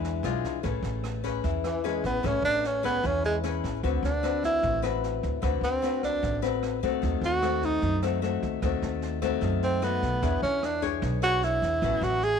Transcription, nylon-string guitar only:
Already playing: E3 G#3 D4
0.24 G#3 D4 F4
0.63 A3 C#4 G#4 B4
1.24 C#4 G#4 B4
1.44 E3
1.84 C#4 G#4 B4
2.23 A3 C#4 G#4 B4
2.83 C#4 G#4 B4
3.03 E3
3.44 C#4 G#4 B4
3.83 D3 C4 F#4 B4
4.23 C4 F#4 B4
4.62 A2
4.82 C4 F#4 B4
5.42 D3 C4 F#4 B4
5.82 C4 F#4 B4
6.23 A2
6.42 C4 F#4 B4
6.83 A3 C4 F#4
7.02 D#3
7.42 A3 C4 F#4
7.82 D#3
8.03 A3 C4 F#4
8.22 A3 C4 F#4
8.63 D#3 A3 C4 F#4
9.22 A3 C4 F#4
9.41 D#3
9.82 A3 F#4
10.23 E3 D4 G#4 C#5
10.82 D4 G#4 C#5
11.02 B2
11.22 D4 G#4 C#5
11.83 A2 F#3 B3 C#4

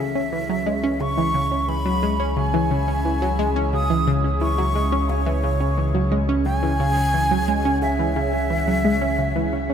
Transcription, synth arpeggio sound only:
0.00 C#3
0.15 C#4
0.32 E3
0.49 F#3
0.66 G#3
0.83 C#4
1.01 C#3
1.18 E3
1.34 C#3
1.52 C#4
1.69 E3
1.86 F#3
2.03 G#3
2.20 C#4
2.37 C#3
2.54 E3
2.71 C#3
2.88 C#4
3.05 E3
3.22 F#3
3.39 G#3
3.56 C#4
3.73 C#3
3.90 E3
4.07 C#3
4.24 C#4
4.41 E3
4.58 F#3
4.75 G#3
4.92 C#4
5.09 C#3
5.26 E3
5.44 C#3
5.61 C#4
5.78 E3
5.95 F#3
6.12 G#3
6.29 C#4
6.46 C#3
6.63 E3
6.80 C#3
6.97 C#4
7.14 E3
7.31 F#3
7.48 G#3
7.65 C#4
7.82 C#3
7.99 E3
8.16 C#3
8.33 C#4
8.50 E3
8.67 F#3
8.84 G#3
9.02 C#4
9.19 C#3
9.36 E3
9.53 C#3
9.70 C#3

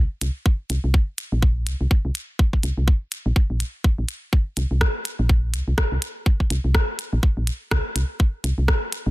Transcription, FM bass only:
0.21 C2
0.70 C2
0.84 C2
1.32 A#1
1.67 C2
1.81 C2
2.05 C2
2.63 C2
2.77 C2
3.26 A#1
3.50 A#1
3.98 A#1
4.57 C2
4.71 C2
5.19 A#1
5.54 C2
5.68 C2
5.92 C2
6.50 C2
6.64 C2
7.13 A#1
7.37 A#1
7.71 C2
7.96 C2
8.44 C2
8.58 C2
9.06 A#1

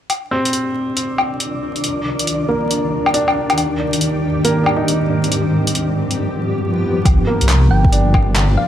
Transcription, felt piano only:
0.31 C4
2.48 A#3
3.14 D4
4.45 A#3
4.64 D4
4.76 D#4
7.27 A#3
7.92 D4

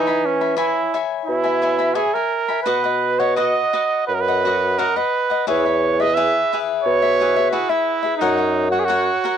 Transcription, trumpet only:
Already playing: D#4
0.26 C#4
0.58 E4
1.26 E4
1.95 G#4
2.14 A#4
2.63 B4
3.19 C#5
3.37 D#5
4.08 B4
4.15 A#4
4.21 B4
4.78 A#4
4.97 B4
5.48 C#5
6.01 D#5
6.14 E5
6.83 C#5
7.51 F#4
7.70 E4
8.18 D#4
8.71 F#4
8.80 G#4
8.85 F#4

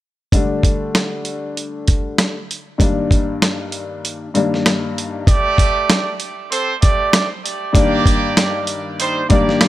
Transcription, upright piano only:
0.32 D3 G3 A3 D4
2.78 G2 D#3 G3 A#3 D4
4.34 G2 D#3 G3 A#3 D4
7.73 G2 D#3 G3 A#3 D4
9.29 G2 D#3 G3 A#3 D4

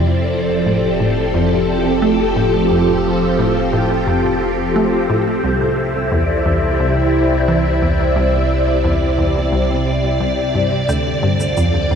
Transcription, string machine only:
Already playing: F3 C4 E4 D5
0.17 A4
0.70 G4
5.44 C3
5.70 E4
6.13 D5
10.89 D3
11.40 F4

